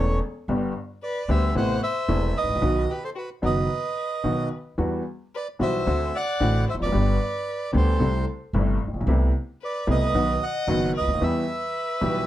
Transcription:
Already playing: upright bass E1, upright piano E1 E2 E3 A3 C#4 A4, violin A4, bandoneon C#5
0.48 upright bass G1, upright piano G1 G2 D3 G3 B3 G4
1.03 violin B4, bandoneon D5
1.28 upright bass D2, upright piano D2 D3 G3 B3 G4, violin C5, bandoneon E5
1.55 upright bass A1, upright piano A1 A2 C3 A3 B3 E4, violin C5, bandoneon F#5
1.82 violin C5, bandoneon E5
2.08 upright bass E1, upright piano E1 E2 C3 A3 B3 E4
2.36 violin B4, bandoneon D#5
2.42 upright bass G#1, upright piano G#1
2.48 upright piano A1, upright bass A1
2.55 upright piano A#1, upright bass A#1
2.62 upright piano B1 B2 D#3 F#3 B3 F#4, upright bass B1
2.90 violin G4, bandoneon B4
3.03 violin A4, bandoneon C5
3.15 violin F#4, bandoneon B4
3.42 upright piano F#1 F#2 D#3 F#3 B3 F#4, upright bass F#1, violin B4, bandoneon D#5
4.23 upright piano B1 B2 D#3 F#3 B3 F#4, upright bass B1
4.78 upright piano E2 E3 G3 B3 F#4, upright bass E2
5.35 violin B4, bandoneon D5
5.59 upright piano B1 B2 E3 G3 B3 F#4, upright bass B1, violin C5, bandoneon E5
5.87 upright piano D2 D3 A3 C4 F#4, upright bass D2
6.15 violin D5, bandoneon F#5
6.40 upright piano A1 A2 D3 A3 C4 F#4, upright bass A1
6.69 violin C5, bandoneon E5
6.74 upright bass E1, upright piano E2
6.80 upright bass F1, upright piano F2, violin B4, bandoneon D5
6.86 upright bass F#1, upright piano F#2
6.92 upright piano G1 G2 D3 G3 B3 G4, upright bass G1
7.73 upright piano D2 D3 G3 B3 G4, upright bass D2, violin A4
7.77 bandoneon C5
7.99 upright piano C2 C3 G3 A3 E4, upright bass C2
8.53 upright bass G1, upright piano G1 G2 C3 G3 A3 E4
8.87 upright bass A1, upright piano A1
8.94 upright piano A#1, upright bass A#1
9.01 upright piano B1, upright bass B1
9.07 upright bass C2, upright piano C2 C3 A3 B3 E4
9.62 violin B4, bandoneon D5
9.87 upright piano C2 C3 A3 B3 E4, upright bass C2, violin B4, bandoneon D#5
10.14 upright bass B1, upright piano B1 B2 D#3 F#3 B3 F#4
10.42 violin D#5, bandoneon F#5
10.67 upright bass F#1, upright piano F#1 F#2 D#3 F#3 B3 F#4
10.95 violin B4, bandoneon D#5
11.00 upright bass C#2, upright piano C#2
11.07 upright bass D2, upright piano D2
11.13 upright piano D#2, upright bass D#2
11.21 upright bass E2, upright piano E2 E3 G3 B3 G4, violin B4, bandoneon E5
12.01 upright piano B1 B2 E3 G3 B3 G4, upright bass B1

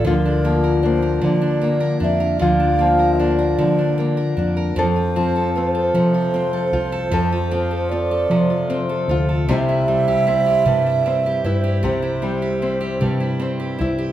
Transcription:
Already playing: nylon-string guitar F3, steel-string acoustic guitar A3 E4 A4
0.05 fretless electric bass D2, nylon-string guitar D3 F4, steel-string acoustic guitar F3, bansuri A#4
0.25 steel-string acoustic guitar D4
0.45 nylon-string guitar F3, steel-string acoustic guitar A#3
0.64 steel-string acoustic guitar A#4
0.83 nylon-string guitar A#3, steel-string acoustic guitar D4, bansuri D5
0.87 bansuri C5
1.02 steel-string acoustic guitar A#4
1.22 fretless electric bass D3, nylon-string guitar D3, steel-string acoustic guitar F3, bansuri D5
1.42 steel-string acoustic guitar D4
1.61 steel-string acoustic guitar A#3, nylon-string guitar A#3
1.80 steel-string acoustic guitar A#4
2.00 fretless electric bass F2, steel-string acoustic guitar D4, bansuri E5
2.04 nylon-string guitar D4
2.20 steel-string acoustic guitar A#4
2.39 fretless electric bass D2, nylon-string guitar D3 F4, steel-string acoustic guitar F3, bansuri F5
2.60 steel-string acoustic guitar D4
2.79 nylon-string guitar F3, steel-string acoustic guitar A#3
2.99 steel-string acoustic guitar A#4
3.19 nylon-string guitar A#3, steel-string acoustic guitar D4, bansuri D5
3.39 steel-string acoustic guitar A#4
3.58 fretless electric bass D3, nylon-string guitar D3, steel-string acoustic guitar F3
3.79 steel-string acoustic guitar D4
3.98 steel-string acoustic guitar A#3, nylon-string guitar A#3
4.17 steel-string acoustic guitar A#4
4.37 fretless electric bass F2, steel-string acoustic guitar D4, nylon-string guitar D4
4.57 steel-string acoustic guitar A#4
4.75 fretless electric bass F2, nylon-string guitar F2 A4, steel-string acoustic guitar F3, bansuri C5
4.96 steel-string acoustic guitar F4
5.16 nylon-string guitar F3, steel-string acoustic guitar C4
5.36 steel-string acoustic guitar A4
5.55 nylon-string guitar C4, steel-string acoustic guitar F4, bansuri B4
5.68 bansuri C5
5.75 steel-string acoustic guitar A4
5.94 nylon-string guitar C3, fretless electric bass F3, steel-string acoustic guitar F3
6.14 steel-string acoustic guitar F4
6.34 steel-string acoustic guitar C4, nylon-string guitar C4
6.53 steel-string acoustic guitar A4
6.72 fretless electric bass C2, nylon-string guitar F4, steel-string acoustic guitar F4
6.92 steel-string acoustic guitar A4
7.11 fretless electric bass F2, nylon-string guitar F2 A4, steel-string acoustic guitar F3
7.32 steel-string acoustic guitar F4
7.51 nylon-string guitar F3, steel-string acoustic guitar C4
7.71 steel-string acoustic guitar A4
7.90 nylon-string guitar C4, steel-string acoustic guitar F4, bansuri D5
8.11 steel-string acoustic guitar A4
8.30 nylon-string guitar C3, fretless electric bass F3, steel-string acoustic guitar F3
8.50 steel-string acoustic guitar F4
8.70 steel-string acoustic guitar C4, nylon-string guitar C4
8.89 steel-string acoustic guitar A4
9.08 fretless electric bass D2, steel-string acoustic guitar F4, nylon-string guitar F4, bansuri C5
9.29 steel-string acoustic guitar A4
9.48 fretless electric bass C2, nylon-string guitar C3 G3 C4 E4, steel-string acoustic guitar G3, bansuri E5
9.52 nylon-string guitar G4
9.69 steel-string acoustic guitar E4
9.88 nylon-string guitar G3, steel-string acoustic guitar C4
10.08 steel-string acoustic guitar G4
10.27 nylon-string guitar C4, steel-string acoustic guitar E4
10.46 steel-string acoustic guitar G4
10.66 nylon-string guitar G2, fretless electric bass C3, steel-string acoustic guitar G3
10.86 steel-string acoustic guitar E4
11.06 steel-string acoustic guitar C4, nylon-string guitar C4
11.26 steel-string acoustic guitar G4
11.44 fretless electric bass G2, steel-string acoustic guitar E4, nylon-string guitar E4, bansuri C5
11.64 steel-string acoustic guitar G4
11.83 fretless electric bass C2, nylon-string guitar C3 G4, steel-string acoustic guitar G3
12.02 steel-string acoustic guitar E4
12.22 nylon-string guitar G3, steel-string acoustic guitar C4
12.42 steel-string acoustic guitar G4
12.62 nylon-string guitar C4, steel-string acoustic guitar E4
12.81 steel-string acoustic guitar G4
13.01 nylon-string guitar G2, fretless electric bass C3, steel-string acoustic guitar G3
13.20 steel-string acoustic guitar E4
13.39 steel-string acoustic guitar C4, nylon-string guitar C4
13.60 steel-string acoustic guitar G4
13.79 fretless electric bass C2, steel-string acoustic guitar E4, nylon-string guitar E4, bansuri C5
13.98 steel-string acoustic guitar G4

